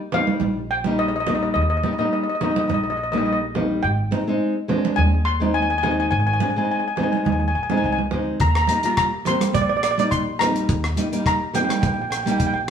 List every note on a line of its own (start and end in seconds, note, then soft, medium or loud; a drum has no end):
0.12 0.56 G3 medium
0.12 0.57 A#3 medium
0.12 0.57 D#4 medium
0.12 0.72 F5 loud
0.12 low conga medium
0.27 high conga medium
0.40 1.51 A#1 loud
0.40 high conga medium
0.71 0.83 G5 medium
0.84 1.11 G3 medium
0.84 1.11 A#3 medium
0.84 1.12 D#4 medium
0.84 high conga medium
0.99 1.07 D#5 medium
1.08 1.15 D#5 medium
1.16 1.19 D#5 medium
1.20 1.27 D#5 medium
1.27 1.62 G3 medium
1.27 1.62 A#3 medium
1.27 1.62 D#4 medium
1.27 1.34 D#5 medium
1.27 low conga medium
1.35 1.41 D#5 medium
1.43 1.51 D#5 medium
1.54 1.82 D#2 loud
1.54 1.61 D#5 medium
1.62 1.69 D#5 medium
1.70 1.76 D#5 medium
1.77 1.83 D#5 medium
1.83 1.93 G3 medium
1.83 1.93 A#3 medium
1.83 1.94 D#4 medium
1.83 1.92 D#5 medium
1.83 high conga medium
1.93 1.98 D#5 medium
1.98 2.24 G3 medium
1.98 2.25 A#3 medium
1.98 2.25 D#4 medium
1.98 2.04 D#5 medium
2.06 2.12 D#5 medium
2.13 2.22 D#5 medium
2.24 2.28 D#5 medium
2.30 2.34 D#5 medium
2.35 2.42 D#5 medium
2.41 2.85 G3 medium
2.41 2.85 A#3 medium
2.41 2.85 D#4 medium
2.41 2.50 D#5 medium
2.41 low conga medium
2.51 2.58 D#5 medium
2.56 2.66 D#5 medium
2.56 high conga medium
2.68 3.80 A#1 loud
2.68 2.73 D#5 medium
2.68 high conga medium
2.74 2.82 D#5 medium
2.84 2.89 D#5 medium
2.90 2.96 D#5 medium
2.97 3.02 D#5 medium
3.04 3.11 D#5 medium
3.12 3.38 G3 medium
3.12 3.39 A#3 medium
3.12 3.39 D#4 medium
3.12 3.17 D#5 medium
3.12 high conga medium
3.18 3.24 D#5 medium
3.26 3.31 D#5 medium
3.33 3.41 D#5 medium
3.55 3.84 G3 medium
3.55 3.84 A#3 medium
3.55 3.85 D#4 medium
3.55 low conga medium
3.83 4.10 G#1 loud
3.83 5.01 G5 medium
4.11 4.21 G#3 medium
4.11 4.21 C4 medium
4.11 4.22 D#4 medium
4.11 high conga medium
4.27 4.53 G#3 medium
4.27 4.53 C4 medium
4.27 4.54 D#4 medium
4.68 5.13 G#3 medium
4.68 5.13 C4 medium
4.68 5.13 D4 loud
4.68 low conga medium
4.85 high conga medium
4.96 6.08 D#2 loud
4.96 5.24 G#5 loud
4.96 high conga medium
5.25 5.55 C6 loud
5.40 5.67 G#3 medium
5.40 5.67 C4 medium
5.40 5.67 D#4 medium
5.40 high conga medium
5.54 5.61 G#5 medium
5.62 5.69 G#5 medium
5.70 5.77 G#5 medium
5.78 5.82 G#5 medium
5.83 6.18 G#3 medium
5.83 6.19 C4 medium
5.83 6.19 D#4 medium
5.83 5.90 G#5 medium
5.83 low conga medium
5.91 5.99 G#5 medium
6.00 6.07 G#5 medium
6.11 6.38 G#1 loud
6.11 6.19 G#5 medium
6.20 6.25 G#5 medium
6.27 6.32 G#5 medium
6.33 6.41 G#5 medium
6.40 6.50 G#3 medium
6.40 6.50 C4 medium
6.40 6.50 D4 medium
6.40 6.49 G#5 medium
6.40 high conga medium
6.50 6.57 G#5 medium
6.56 6.82 G#3 medium
6.56 6.82 C4 medium
6.56 6.83 D#4 medium
6.56 6.63 G#5 medium
6.65 6.70 G#5 medium
6.71 6.79 G#5 medium
6.80 6.87 G#5 medium
6.88 6.94 G#5 medium
6.96 7.42 G#3 medium
6.96 7.42 C4 medium
6.96 7.02 G#5 medium
6.96 low conga medium
7.00 7.43 D#4 medium
7.00 7.10 G#5 medium
7.12 7.16 G#5 medium
7.12 high conga medium
7.17 7.24 G#5 medium
7.25 7.52 D#2 loud
7.25 7.31 G#5 soft
7.25 high conga medium
7.32 7.39 G#5 medium
7.40 7.47 G#5 soft
7.48 7.54 G#5 medium
7.55 7.81 A#1 medium
7.55 7.62 G#5 medium
7.63 7.70 G#5 medium
7.70 7.96 G#3 medium
7.70 7.96 C4 medium
7.70 7.96 D#4 medium
7.70 7.76 G#5 medium
7.70 high conga medium
7.70 low conga medium
7.77 7.84 G#5 medium
7.84 8.10 C2 medium
7.84 7.91 G#5 medium
7.93 8.00 G#5 medium
7.98 high conga medium
8.11 8.38 D2 medium
8.11 8.41 G#3 medium
8.11 8.41 C4 medium
8.11 8.42 D#4 medium
8.11 low conga medium
8.40 8.67 D#2 loud
8.40 8.47 A#5 medium
8.40 kick loud
8.40 closed hi-hat medium
8.49 8.55 A#5 medium
8.55 8.61 A#5 medium
8.55 cross-stick medium
8.62 8.68 A#5 medium
8.67 8.79 G3 medium
8.67 8.79 A#3 medium
8.67 8.79 D#4 medium
8.67 8.76 A#5 medium
8.67 closed hi-hat medium
8.67 high conga medium
8.77 8.84 A#5 medium
8.83 9.09 G3 medium
8.83 9.10 A#3 medium
8.83 9.10 F4 medium
8.83 8.93 A#5 medium
8.83 closed hi-hat medium
8.97 9.27 A#5 loud
8.97 kick medium
8.97 cross-stick medium
8.97 closed hi-hat medium
9.25 9.70 G3 medium
9.25 9.70 A#3 medium
9.25 9.70 C4 medium
9.25 9.56 C6 loud
9.25 closed hi-hat medium
9.25 low conga medium
9.41 cross-stick medium
9.41 closed hi-hat medium
9.41 high conga medium
9.53 10.65 A#1 medium
9.53 9.60 D5 loud
9.53 kick loud
9.53 closed hi-hat medium
9.53 high conga medium
9.62 9.68 D5 medium
9.69 9.76 D5 medium
9.77 9.83 D5 medium
9.83 9.90 D5 medium
9.83 cross-stick medium
9.83 closed hi-hat medium
9.91 9.98 D5 medium
9.98 10.24 G3 medium
9.98 10.24 A#3 medium
9.98 10.24 D#4 medium
9.98 10.07 D5 medium
9.98 closed hi-hat medium
9.98 high conga medium
10.11 10.41 C6 loud
10.11 kick medium
10.11 closed hi-hat medium
10.39 10.75 G3 medium
10.39 10.75 A#3 medium
10.39 10.76 D#4 medium
10.39 11.26 A#5 loud
10.39 cross-stick medium
10.39 closed hi-hat medium
10.39 low conga medium
10.56 closed hi-hat medium
10.69 10.95 D#2 loud
10.69 kick loud
10.69 closed hi-hat medium
10.84 cross-stick medium
10.96 11.06 G3 medium
10.96 11.06 A#3 medium
10.96 11.07 D#4 medium
10.96 closed hi-hat medium
10.96 high conga medium
11.12 11.38 G3 medium
11.12 11.38 A#3 medium
11.12 11.38 D#4 medium
11.12 closed hi-hat medium
11.26 11.53 A#5 loud
11.26 kick medium
11.26 cross-stick medium
11.26 closed hi-hat medium
11.53 11.97 G3 medium
11.53 11.98 A#3 medium
11.53 11.98 D#4 medium
11.53 11.62 G5 medium
11.53 closed hi-hat medium
11.53 low conga medium
11.65 11.71 G5 medium
11.69 11.78 G5 medium
11.69 cross-stick medium
11.69 closed hi-hat medium
11.69 high conga medium
11.81 12.70 A#1 loud
11.81 11.85 G5 soft
11.81 kick loud
11.81 closed hi-hat medium
11.81 high conga medium
11.86 11.93 G5 medium
11.94 12.00 G5 soft
12.01 12.07 G5 medium
12.10 12.16 G5 medium
12.10 cross-stick medium
12.10 closed hi-hat medium
12.17 12.22 G5 soft
12.23 12.51 G3 medium
12.23 12.52 A#3 medium
12.23 12.52 D#4 medium
12.23 12.30 G5 soft
12.23 closed hi-hat medium
12.23 high conga medium
12.31 12.37 G5 medium
12.38 12.45 G5 medium
12.38 kick medium
12.38 closed hi-hat medium
12.47 12.52 G5 medium
12.54 12.60 G5 medium